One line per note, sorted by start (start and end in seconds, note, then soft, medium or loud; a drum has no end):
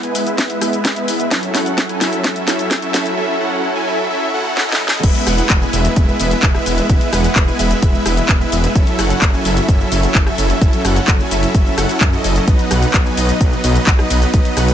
0.03 0.13 G#3 medium
0.03 0.13 B3 medium
0.03 0.13 E4 medium
0.03 0.13 B4 medium
0.03 0.13 G#5 medium
0.03 closed hi-hat soft
0.03 cabasa soft
0.15 0.36 G#3 medium
0.15 0.36 B3 medium
0.15 0.35 E4 medium
0.15 0.36 B4 medium
0.15 0.36 E5 medium
0.15 open hi-hat loud
0.15 cabasa medium
0.27 closed hi-hat soft
0.27 cabasa soft
0.38 0.59 G#3 medium
0.38 0.59 B3 medium
0.38 0.59 E4 medium
0.38 0.59 B4 medium
0.38 0.59 E5 medium
0.38 kick loud
0.38 snare medium
0.38 closed hi-hat medium
0.38 cabasa soft
0.50 closed hi-hat soft
0.50 cabasa soft
0.61 0.94 G#3 medium
0.61 0.94 B3 medium
0.61 0.94 E4 medium
0.61 0.94 B4 medium
0.61 0.94 E5 medium
0.61 cross-stick medium
0.61 open hi-hat loud
0.61 cabasa medium
0.73 closed hi-hat soft
0.73 cabasa soft
0.85 kick loud
0.85 snare medium
0.85 closed hi-hat loud
0.85 cabasa soft
0.96 1.06 G#3 medium
0.96 1.06 B3 medium
0.96 1.06 E4 medium
0.96 1.06 B4 medium
0.96 1.06 E5 loud
0.96 closed hi-hat soft
0.96 cabasa soft
1.08 1.29 G#3 medium
1.08 1.29 B3 medium
1.08 1.29 E4 medium
1.08 1.29 B4 medium
1.08 1.29 E5 medium
1.08 open hi-hat loud
1.08 cabasa medium
1.20 closed hi-hat soft
1.20 cabasa soft
1.31 1.52 F#3 medium
1.31 1.52 C#4 medium
1.31 1.52 E4 medium
1.31 1.52 A4 medium
1.31 1.52 E5 loud
1.31 kick loud
1.31 snare medium
1.31 closed hi-hat medium
1.31 cabasa soft
1.43 closed hi-hat soft
1.43 cabasa soft
1.54 1.87 F#3 medium
1.54 1.87 C#4 medium
1.54 1.87 E4 medium
1.54 1.87 A4 medium
1.54 1.87 F#5 medium
1.54 snare medium
1.54 open hi-hat loud
1.54 cabasa medium
1.66 closed hi-hat soft
1.66 cabasa soft
1.78 kick loud
1.78 snare medium
1.78 closed hi-hat medium
1.78 cabasa soft
1.89 1.99 F#3 medium
1.89 1.99 C#4 medium
1.89 1.99 E4 medium
1.89 1.99 A4 medium
1.89 1.99 G#5 medium
1.89 closed hi-hat soft
1.89 cabasa soft
2.01 2.22 F#3 medium
2.01 2.22 C#4 medium
2.01 2.22 E4 medium
2.01 2.22 A4 medium
2.01 2.22 E5 medium
2.01 snare medium
2.01 open hi-hat loud
2.01 cabasa medium
2.13 closed hi-hat soft
2.13 cabasa soft
2.24 2.45 F#3 medium
2.24 2.45 C#4 medium
2.24 2.45 E4 medium
2.24 2.45 A4 medium
2.24 2.45 E5 medium
2.24 kick loud
2.24 snare medium
2.24 closed hi-hat medium
2.24 cabasa soft
2.36 closed hi-hat soft
2.36 cabasa soft
2.48 2.80 F#3 medium
2.48 2.80 C#4 medium
2.48 2.80 E4 medium
2.48 2.80 A4 medium
2.48 2.80 E5 medium
2.48 snare medium
2.48 open hi-hat loud
2.48 cabasa medium
2.59 closed hi-hat soft
2.59 cabasa soft
2.71 kick loud
2.71 snare medium
2.71 closed hi-hat medium
2.71 cabasa soft
2.82 2.92 F#3 medium
2.82 2.92 C#4 medium
2.82 2.92 E4 medium
2.82 2.92 A4 medium
2.82 2.92 E5 loud
2.82 closed hi-hat soft
2.82 cabasa soft
2.94 3.15 F#3 medium
2.94 3.15 C#4 medium
2.94 3.15 E4 medium
2.94 3.15 A4 medium
2.94 3.15 E5 medium
2.94 snare medium
2.94 open hi-hat loud
2.94 cabasa medium
3.06 closed hi-hat soft
3.06 cabasa soft
3.17 3.38 F#3 medium
3.17 3.38 C#4 medium
3.17 3.38 E4 medium
3.17 3.38 A4 medium
3.17 3.38 E5 loud
3.41 3.73 F#3 medium
3.41 3.73 C#4 medium
3.41 3.73 E4 medium
3.41 3.73 A4 medium
3.41 3.73 F#5 medium
3.75 3.85 F#3 medium
3.75 3.85 C#4 medium
3.75 3.85 E4 medium
3.75 3.85 A4 medium
3.75 3.85 G#5 medium
3.87 4.08 F#3 medium
3.87 4.08 C#4 medium
3.87 4.08 E4 medium
3.87 4.08 A4 medium
3.87 4.08 E5 medium
4.10 4.31 F#3 medium
4.10 4.31 C#4 medium
4.10 4.31 E4 medium
4.10 4.31 A4 medium
4.10 4.31 E5 medium
4.34 4.66 F#3 medium
4.34 4.66 C#4 medium
4.34 4.66 E4 medium
4.34 4.66 A4 medium
4.34 4.66 F#5 medium
4.57 snare medium
4.69 4.77 F#3 medium
4.69 4.77 C#4 medium
4.69 4.77 E4 medium
4.69 4.77 A4 medium
4.69 4.77 D#5 loud
4.69 snare medium
4.80 5.01 F#3 medium
4.80 5.01 C#4 medium
4.80 5.01 E4 medium
4.80 5.01 A4 medium
4.80 5.01 D#5 medium
4.88 snare loud
5.03 5.10 E1 loud
5.03 5.24 G#3 medium
5.03 5.24 B3 medium
5.03 5.24 E4 medium
5.03 5.24 B4 medium
5.03 5.24 E5 loud
5.03 kick loud
5.03 closed hi-hat medium
5.03 crash loud
5.03 cabasa soft
5.15 closed hi-hat soft
5.15 cabasa soft
5.27 5.41 E1 medium
5.27 5.59 G#3 medium
5.27 5.59 B3 medium
5.27 5.59 E4 medium
5.27 5.59 B4 medium
5.27 5.59 F#5 medium
5.27 cross-stick medium
5.27 open hi-hat loud
5.27 cabasa medium
5.38 closed hi-hat medium
5.38 cabasa soft
5.50 5.64 E1 loud
5.50 kick loud
5.50 clap loud
5.50 closed hi-hat medium
5.50 cabasa soft
5.62 5.71 G#3 medium
5.62 5.71 B3 medium
5.62 5.71 E4 medium
5.62 5.71 B4 medium
5.62 5.71 G#5 medium
5.62 cabasa soft
5.73 5.87 E1 loud
5.73 5.94 G#3 medium
5.73 5.94 B3 medium
5.73 5.94 E4 medium
5.73 5.94 B4 medium
5.73 5.94 E5 medium
5.73 open hi-hat loud
5.73 cabasa medium
5.85 closed hi-hat medium
5.85 cabasa soft
5.96 6.11 E1 loud
5.96 6.17 G#3 medium
5.96 6.17 B3 medium
5.96 6.17 E4 medium
5.96 6.17 B4 medium
5.96 6.17 E5 medium
5.96 kick loud
5.96 closed hi-hat medium
5.96 cabasa soft
6.09 cabasa soft
6.20 6.34 E1 medium
6.20 6.52 G#3 medium
6.20 6.52 B3 medium
6.20 6.52 E4 medium
6.20 6.52 B4 medium
6.20 6.52 E5 medium
6.20 open hi-hat loud
6.20 cabasa medium
6.31 closed hi-hat medium
6.31 cabasa soft
6.43 6.57 E1 loud
6.43 kick loud
6.43 clap loud
6.43 closed hi-hat medium
6.43 cabasa soft
6.55 6.64 G#3 medium
6.55 6.64 B3 medium
6.55 6.64 E4 medium
6.55 6.64 B4 medium
6.55 6.64 E5 loud
6.55 cross-stick medium
6.55 cabasa soft
6.66 6.80 E1 medium
6.66 6.87 G#3 medium
6.66 6.87 B3 medium
6.66 6.87 E4 medium
6.66 6.87 B4 medium
6.66 6.87 E5 medium
6.66 open hi-hat loud
6.66 cabasa medium
6.78 closed hi-hat medium
6.78 cabasa soft
6.89 6.96 E1 loud
6.89 7.10 G#3 medium
6.89 7.10 B3 medium
6.89 7.10 E4 medium
6.89 7.10 B4 medium
6.89 7.10 E5 loud
6.89 kick loud
6.89 closed hi-hat medium
6.89 cabasa soft
7.01 closed hi-hat soft
7.01 cabasa soft
7.13 7.27 E1 medium
7.13 7.45 G#3 medium
7.13 7.45 B3 medium
7.13 7.45 E4 medium
7.13 7.45 B4 medium
7.13 7.45 F#5 medium
7.13 cross-stick medium
7.13 open hi-hat loud
7.13 cabasa medium
7.24 closed hi-hat medium
7.24 cabasa soft
7.36 7.50 E1 loud
7.36 kick loud
7.36 clap loud
7.36 closed hi-hat medium
7.36 cabasa soft
7.48 7.57 G#3 medium
7.48 7.57 B3 medium
7.48 7.57 E4 medium
7.48 7.57 B4 medium
7.48 7.57 G#5 medium
7.48 cabasa soft
7.59 7.73 E1 loud
7.59 7.80 G#3 medium
7.59 7.80 B3 medium
7.59 7.80 E4 medium
7.59 7.80 B4 medium
7.59 7.80 E5 medium
7.59 open hi-hat loud
7.59 cabasa medium
7.71 closed hi-hat medium
7.71 cabasa soft
7.82 7.97 E1 loud
7.82 8.03 G#3 medium
7.82 8.03 B3 medium
7.82 8.03 E4 medium
7.82 8.03 B4 medium
7.82 8.03 E5 medium
7.82 kick loud
7.82 closed hi-hat medium
7.82 cabasa soft
7.95 cabasa soft
8.06 8.20 E1 medium
8.06 8.38 G#3 medium
8.06 8.38 B3 medium
8.06 8.38 E4 medium
8.06 8.38 B4 medium
8.06 8.38 E5 medium
8.06 cross-stick medium
8.06 open hi-hat loud
8.06 cabasa medium
8.17 closed hi-hat medium
8.17 cabasa soft
8.29 8.43 E1 medium
8.29 kick loud
8.29 clap loud
8.29 closed hi-hat medium
8.29 cabasa soft
8.41 8.50 G#3 medium
8.41 8.50 B3 medium
8.41 8.50 E4 medium
8.41 8.50 B4 medium
8.41 8.50 E5 loud
8.41 cabasa soft
8.52 8.66 E1 medium
8.52 8.73 G#3 medium
8.52 8.73 B3 medium
8.52 8.73 E4 medium
8.52 8.73 B4 medium
8.52 8.73 E5 medium
8.52 open hi-hat loud
8.52 cabasa medium
8.64 closed hi-hat medium
8.64 cabasa soft
8.75 8.82 F#1 loud
8.75 8.96 F#3 medium
8.75 8.96 C#4 medium
8.75 8.96 E4 medium
8.75 8.96 A4 medium
8.75 8.96 E5 loud
8.75 kick loud
8.75 closed hi-hat medium
8.75 cabasa soft
8.87 closed hi-hat soft
8.87 cabasa soft
8.99 9.13 F#1 medium
8.99 9.31 F#3 medium
8.99 9.31 C#4 medium
8.99 9.31 E4 medium
8.99 9.31 A4 medium
8.99 9.31 F#5 medium
8.99 cross-stick medium
8.99 open hi-hat loud
8.99 cabasa medium
9.10 closed hi-hat medium
9.10 cabasa soft
9.22 9.36 F#1 loud
9.22 kick loud
9.22 clap loud
9.22 closed hi-hat medium
9.22 cabasa soft
9.34 9.43 F#3 medium
9.34 9.43 C#4 medium
9.34 9.43 E4 medium
9.34 9.43 A4 medium
9.34 9.43 G#5 medium
9.34 cabasa soft
9.45 9.59 F#1 medium
9.45 9.66 F#3 medium
9.45 9.66 C#4 medium
9.45 9.66 E4 medium
9.45 9.66 A4 medium
9.45 9.66 E5 medium
9.45 open hi-hat loud
9.45 cabasa medium
9.57 closed hi-hat medium
9.57 cabasa soft
9.68 9.83 F#1 loud
9.68 9.89 F#3 medium
9.68 9.89 C#4 medium
9.68 9.89 E4 medium
9.68 9.89 A4 medium
9.68 9.89 E5 medium
9.68 kick loud
9.68 closed hi-hat medium
9.68 cabasa soft
9.81 cabasa soft
9.92 10.06 F#1 medium
9.92 10.24 F#3 medium
9.92 10.24 C#4 medium
9.92 10.24 E4 medium
9.92 10.24 A4 medium
9.92 10.24 E5 medium
9.92 open hi-hat loud
9.92 cabasa medium
10.03 closed hi-hat medium
10.03 cabasa soft
10.15 10.29 F#1 medium
10.15 kick loud
10.15 clap loud
10.15 closed hi-hat medium
10.15 cabasa soft
10.27 10.37 F#3 medium
10.27 10.37 C#4 medium
10.27 10.37 E4 medium
10.27 10.37 A4 medium
10.27 10.37 E5 loud
10.27 cross-stick medium
10.27 cabasa soft
10.38 10.52 F#1 medium
10.38 10.59 F#3 medium
10.38 10.59 C#4 medium
10.38 10.59 E4 medium
10.38 10.59 A4 medium
10.38 10.59 E5 medium
10.38 open hi-hat loud
10.38 cabasa medium
10.50 closed hi-hat soft
10.50 cabasa soft
10.61 10.69 F#1 loud
10.61 10.82 F#3 medium
10.61 10.82 C#4 medium
10.61 10.82 E4 medium
10.61 10.82 A4 medium
10.61 10.82 E5 loud
10.61 kick loud
10.61 closed hi-hat medium
10.61 cabasa soft
10.73 closed hi-hat soft
10.73 cabasa soft
10.85 10.99 F#1 loud
10.85 11.17 F#3 medium
10.85 11.17 C#4 medium
10.85 11.17 E4 medium
10.85 11.17 A4 medium
10.85 11.17 F#5 medium
10.85 cross-stick medium
10.85 open hi-hat loud
10.85 cabasa medium
10.96 closed hi-hat medium
10.96 cabasa soft
11.08 11.22 F#1 medium
11.08 kick loud
11.08 clap loud
11.08 closed hi-hat medium
11.08 cabasa soft
11.20 11.30 F#3 medium
11.20 11.30 C#4 medium
11.20 11.30 E4 medium
11.20 11.30 A4 medium
11.20 11.30 G#5 medium
11.20 cabasa soft
11.31 11.45 F#1 loud
11.31 11.52 F#3 medium
11.31 11.52 C#4 medium
11.31 11.52 E4 medium
11.31 11.52 A4 medium
11.31 11.52 E5 medium
11.31 open hi-hat loud
11.31 cabasa medium
11.43 closed hi-hat medium
11.43 cabasa soft
11.54 11.69 F#1 loud
11.54 11.75 F#3 medium
11.54 11.75 C#4 medium
11.54 11.75 E4 medium
11.54 11.75 A4 medium
11.54 11.75 E5 medium
11.54 kick loud
11.54 closed hi-hat medium
11.54 cabasa soft
11.67 cabasa soft
11.78 11.85 F#1 loud
11.78 12.10 F#3 medium
11.78 12.10 C#4 medium
11.78 12.10 E4 medium
11.78 12.10 A4 medium
11.78 12.10 F#5 medium
11.78 cross-stick medium
11.78 open hi-hat loud
11.78 cabasa medium
11.89 closed hi-hat soft
11.89 cabasa soft
12.01 12.15 F#2 medium
12.01 kick loud
12.01 clap loud
12.01 closed hi-hat medium
12.01 cabasa soft
12.13 12.21 F#3 medium
12.13 12.21 C#4 medium
12.13 12.22 E4 medium
12.13 12.21 A4 medium
12.13 12.22 D#5 loud
12.13 cabasa soft
12.24 12.38 F#1 medium
12.24 12.45 F#3 medium
12.24 12.45 C#4 medium
12.24 12.45 E4 medium
12.24 12.45 A4 medium
12.24 12.45 D#5 medium
12.24 open hi-hat loud
12.24 cabasa medium
12.36 closed hi-hat soft
12.36 cabasa soft
12.47 12.55 B1 loud
12.47 12.68 F#3 medium
12.47 12.68 B3 medium
12.47 12.68 D#4 medium
12.47 12.68 B4 medium
12.47 12.68 D#5 loud
12.47 kick loud
12.47 closed hi-hat medium
12.47 cabasa soft
12.59 closed hi-hat soft
12.59 cabasa soft
12.71 12.85 B1 medium
12.71 13.03 F#3 medium
12.71 13.03 B3 medium
12.71 13.03 D#4 medium
12.71 13.03 B4 medium
12.71 13.03 F#5 medium
12.71 cross-stick medium
12.71 open hi-hat loud
12.71 ride medium
12.71 cabasa medium
12.82 closed hi-hat medium
12.82 cabasa soft
12.94 13.08 B1 loud
12.94 kick loud
12.94 clap loud
12.94 closed hi-hat medium
12.94 cabasa soft
13.06 13.16 F#3 medium
13.06 13.16 B3 medium
13.06 13.16 D#4 medium
13.06 13.16 B4 medium
13.06 13.16 G#5 medium
13.06 cabasa soft
13.17 13.31 B1 loud
13.17 13.38 F#3 medium
13.17 13.38 B3 medium
13.17 13.38 D#4 medium
13.17 13.38 B4 medium
13.17 13.38 D#5 medium
13.17 open hi-hat loud
13.17 ride medium
13.17 cabasa medium
13.29 closed hi-hat medium
13.29 cabasa soft
13.40 13.55 B1 loud
13.40 13.61 F#3 medium
13.40 13.61 B3 medium
13.40 13.61 D#4 medium
13.40 13.61 B4 medium
13.40 13.61 D#5 medium
13.40 kick loud
13.40 closed hi-hat medium
13.40 cabasa soft
13.53 cabasa soft
13.64 13.78 B1 medium
13.64 13.96 F#3 medium
13.64 13.96 B3 medium
13.64 13.96 D#4 medium
13.64 13.96 B4 medium
13.64 13.96 D#5 medium
13.64 open hi-hat loud
13.64 ride medium
13.64 cabasa medium
13.76 closed hi-hat soft
13.76 cabasa soft
13.87 14.01 B1 loud
13.87 kick loud
13.87 clap loud
13.87 closed hi-hat medium
13.87 cabasa soft
13.99 14.09 F#3 medium
13.99 14.09 B3 medium
13.99 14.09 D#4 medium
13.99 14.09 B4 medium
13.99 14.09 D#5 loud
13.99 cross-stick medium
13.99 cabasa soft
14.10 14.24 B1 medium
14.10 14.31 F#3 medium
14.10 14.31 B3 medium
14.10 14.31 D#4 medium
14.10 14.31 B4 medium
14.10 14.31 D#5 medium
14.10 open hi-hat loud
14.10 ride medium
14.10 cabasa medium
14.22 closed hi-hat medium
14.22 cabasa soft
14.34 14.41 B1 loud
14.34 14.54 F#3 medium
14.34 14.54 B3 medium
14.34 14.54 D#4 medium
14.34 14.54 B4 medium
14.34 14.54 D#5 loud
14.34 kick loud
14.34 closed hi-hat medium
14.34 cabasa soft
14.45 closed hi-hat soft
14.45 cabasa soft
14.57 14.71 B1 loud
14.57 14.74 F#3 medium
14.57 14.74 B3 medium
14.57 14.74 D#4 medium
14.57 14.74 B4 medium
14.57 14.74 F#5 medium
14.57 cross-stick medium
14.57 open hi-hat loud
14.57 ride medium
14.57 cabasa medium
14.68 closed hi-hat medium
14.68 cabasa soft